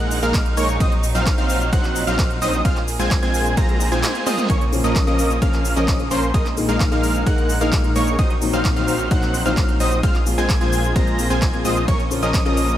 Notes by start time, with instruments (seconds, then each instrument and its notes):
Already playing: detuned saw bass A#1, supersaw synth G#3 A#3 D#4 A#4 F#5, string section G#3 A#3 D#4, analog synth lead F#6
0.11 open hi-hat, shaker
0.23 detuned saw bass A#1, supersaw synth G#3 A#3 D#4 A#4 F5, analog synth lead F6, closed hi-hat, shaker
0.34 kick, clap, closed hi-hat, ride, shaker
0.46 closed hi-hat
0.57 detuned saw bass A#1, supersaw synth G#3 A#3 D#4 A#4 C#5, analog synth lead C#6, open hi-hat, shaker
0.69 closed hi-hat, shaker
0.80 detuned saw bass A#1, supersaw synth F#3 C4 D#4 C5 D#5, string section F#3 C4, analog synth lead D#6, kick, closed hi-hat, ride, shaker
0.92 closed hi-hat
1.03 open hi-hat, shaker
1.15 detuned saw bass A#1, supersaw synth F#3 C4 D#4 C5 F5, analog synth lead F6, closed hi-hat, shaker
1.26 kick, clap, closed hi-hat, ride, shaker
1.38 detuned saw bass A#1, supersaw synth F#3 C4 D#4 C5 F5, analog synth lead F6, closed hi-hat
1.50 open hi-hat, shaker
1.61 closed hi-hat, shaker
1.73 detuned saw bass A#1, supersaw synth F#3 C4 D#4 C5 F#5, analog synth lead F#6, kick, closed hi-hat, ride, shaker
1.84 clap, closed hi-hat
1.96 open hi-hat, shaker
2.07 detuned saw bass A#1, supersaw synth F#3 C4 D#4 C5 F5, analog synth lead F6, closed hi-hat, shaker
2.19 kick, clap, closed hi-hat, ride, shaker
2.30 closed hi-hat
2.42 detuned saw bass A#1, supersaw synth F#3 C4 D#4 C5 D#5, analog synth lead D#6, open hi-hat, shaker
2.53 closed hi-hat, shaker
2.65 detuned saw bass A#1, supersaw synth G#3 C4 F4 C5 F5, string section A#3 F4 G#4, analog synth lead F6, kick, closed hi-hat, ride, shaker
2.77 clap, closed hi-hat
2.88 open hi-hat, shaker
3.00 detuned saw bass A#1, supersaw synth G#3 C4 F4 C5 G#5, analog synth lead G#6, closed hi-hat, shaker
3.11 kick, clap, closed hi-hat, ride, shaker
3.23 detuned saw bass A#1, supersaw synth G#3 C4 F4 C5 G#5, analog synth lead G#6, closed hi-hat
3.34 open hi-hat, shaker
3.46 closed hi-hat, shaker
3.57 detuned saw bass A#1, supersaw synth G#3 C4 F4 C5 A#5, analog synth lead A#6, kick, closed hi-hat, high tom, ride, reverse cymbal, shaker
3.69 closed hi-hat, high tom
3.80 open hi-hat, shaker
3.92 detuned saw bass A#1, supersaw synth G#3 C4 F4 C5 G#5, analog synth lead G#6, closed hi-hat, mid tom, shaker
4.04 clap, closed hi-hat, mid tom, ride, shaker
4.15 closed hi-hat
4.26 supersaw synth G#3 C4 F4 C5 D#5, analog synth lead D#6, mid tom, open hi-hat, shaker
4.38 closed hi-hat, mid tom, shaker
4.50 detuned saw bass A#1, supersaw synth F3 A#3 C#4 A#4 C#5, string section C#4, analog synth lead C#6, kick, closed hi-hat, ride, shaker
4.61 closed hi-hat
4.72 grand piano C#3 F3 A#3 C#4, open hi-hat, shaker
4.84 detuned saw bass A#1, supersaw synth F3 A#3 C#4 A#4 D#5, analog synth lead D#6, closed hi-hat, shaker
4.96 kick, clap, closed hi-hat, ride, shaker
5.07 detuned saw bass A#1, grand piano C#3 F3 A#3 C#4, supersaw synth F3 A#3 C#4 A#4 D#5, analog synth lead D#6, closed hi-hat
5.19 open hi-hat, shaker
5.30 closed hi-hat, shaker
5.41 detuned saw bass A#1, grand piano C#3 F3 A#3 C#4, supersaw synth F3 A#3 C#4 A#4 F5, analog synth lead F6, kick, closed hi-hat, ride, shaker
5.53 clap, closed hi-hat
5.65 open hi-hat, shaker
5.76 detuned saw bass A#1, grand piano C#3 F3 A#3 C#4, supersaw synth F3 A#3 C#4 A#4 D#5, analog synth lead D#6, closed hi-hat, shaker
5.88 kick, clap, closed hi-hat, ride, shaker
5.99 grand piano C#3 F3 A#3 C#4, closed hi-hat
6.11 detuned saw bass A#1, supersaw synth F3 A#3 C#4 A#4 C5, analog synth lead C6, open hi-hat, shaker
6.23 closed hi-hat, shaker
6.34 detuned saw bass A#1, supersaw synth G#3 A#3 D#4 A#4 D#5, string section G#3 D#4, analog synth lead D#6, kick, closed hi-hat, ride, shaker
6.46 clap, closed hi-hat
6.57 grand piano A#2 D#3 G#3 A#3 D#4, open hi-hat, shaker
6.69 detuned saw bass A#1, supersaw synth G#3 A#3 D#4 A#4 F5, analog synth lead F6, closed hi-hat, shaker
6.80 kick, clap, closed hi-hat, ride, shaker
6.91 detuned saw bass A#1, grand piano A#2 D#3 G#3 A#3 D#4, supersaw synth G#3 A#3 D#4 A#4 F5, analog synth lead F6, closed hi-hat
7.03 open hi-hat, shaker
7.15 closed hi-hat, shaker
7.26 detuned saw bass A#1, grand piano A#2 D#3 G#3 A#3 D#4, supersaw synth G#3 A#3 D#4 A#4 F#5, analog synth lead F#6, kick, closed hi-hat, ride, shaker
7.38 closed hi-hat
7.50 open hi-hat, shaker
7.60 detuned saw bass A#1, grand piano A#2 D#3 G#3 A#3 D#4, supersaw synth G#3 A#3 D#4 A#4 F5, analog synth lead F6, closed hi-hat, shaker
7.73 kick, clap, closed hi-hat, ride, shaker
7.84 grand piano A#2 D#3 G#3 A#3 D#4, closed hi-hat
7.96 detuned saw bass A#1, supersaw synth G#3 A#3 D#4 A#4 C#5, analog synth lead C#6, open hi-hat, shaker
8.07 closed hi-hat, shaker
8.19 detuned saw bass A#1, supersaw synth F#3 C4 D#4 C5 D#5, string section F#3 C4, analog synth lead D#6, kick, closed hi-hat, ride, shaker
8.30 closed hi-hat
8.41 grand piano A#2 D#3 F#3 C4 D#4, open hi-hat, shaker
8.53 detuned saw bass A#1, supersaw synth F#3 C4 D#4 C5 F5, analog synth lead F6, shaker
8.65 kick, clap, closed hi-hat, ride, shaker
8.76 detuned saw bass A#1, grand piano A#2 D#3 F#3 C4 D#4, supersaw synth F#3 C4 D#4 C5 F5, analog synth lead F6, closed hi-hat
8.88 open hi-hat, shaker
8.99 shaker
9.10 detuned saw bass A#1, grand piano A#2 D#3 F#3 C4 D#4, supersaw synth F#3 C4 D#4 C5 F#5, analog synth lead F#6, kick, closed hi-hat, ride, shaker
9.23 clap, closed hi-hat
9.34 open hi-hat, shaker
9.45 detuned saw bass A#1, grand piano A#2 D#3 F#3 C4 D#4, supersaw synth F#3 C4 D#4 C5 F5, analog synth lead F6, shaker
9.57 kick, clap, closed hi-hat, ride, shaker
9.68 grand piano A#2 D#3 F#3 C4 D#4, closed hi-hat
9.80 detuned saw bass A#1, supersaw synth F#3 C4 D#4 C5 D#5, analog synth lead D#6, open hi-hat, shaker
9.92 closed hi-hat, shaker
10.03 detuned saw bass A#1, supersaw synth G#3 C4 F4 C5 F5, string section A#3 F4 G#4, analog synth lead F6, kick, closed hi-hat, ride, shaker
10.15 clap, closed hi-hat
10.26 grand piano A#2 F3 G#3 C4 F4, open hi-hat, shaker
10.38 detuned saw bass A#1, supersaw synth G#3 C4 F4 C5 G#5, analog synth lead G#6, shaker
10.50 kick, clap, closed hi-hat, ride, shaker
10.60 detuned saw bass A#1, grand piano A#2 F3 G#3 C4 F4, supersaw synth G#3 C4 F4 C5 G#5, analog synth lead G#6, closed hi-hat
10.73 open hi-hat, shaker
10.84 closed hi-hat, shaker
10.95 detuned saw bass A#1, grand piano A#2 F3 G#3 C4 F4, supersaw synth G#3 C4 F4 C5 A#5, analog synth lead A#6, kick, closed hi-hat, ride, shaker
11.07 closed hi-hat
11.18 grand piano A#2 F3 G#3 C4 F4, open hi-hat, shaker
11.30 detuned saw bass A#1, supersaw synth G#3 C4 F4 C5 G#5, analog synth lead G#6, closed hi-hat, shaker
11.42 kick, clap, closed hi-hat, ride, shaker
11.53 grand piano A#2 F3 G#3 C4 F4, closed hi-hat
11.64 detuned saw bass A#1, grand piano A#2 F3 G#3 C4 F4, supersaw synth G#3 C4 F4 C5 D#5, analog synth lead D#6, open hi-hat, shaker
11.77 closed hi-hat, shaker
11.88 detuned saw bass A#1, supersaw synth F3 A#3 C#4 A#4 C#5, string section C#4, analog synth lead C#6, kick, closed hi-hat, ride, shaker
12.00 closed hi-hat
12.10 grand piano C#3 F3 A#3 C#4, open hi-hat, shaker
12.23 detuned saw bass A#1, supersaw synth F3 A#3 C#4 A#4 D#5, analog synth lead D#6, closed hi-hat, shaker
12.34 kick, clap, closed hi-hat, ride, shaker
12.45 detuned saw bass A#1, grand piano C#3 F3 A#3 C#4, supersaw synth F3 A#3 C#4 A#4 D#5, analog synth lead D#6, closed hi-hat
12.57 open hi-hat, shaker
12.69 shaker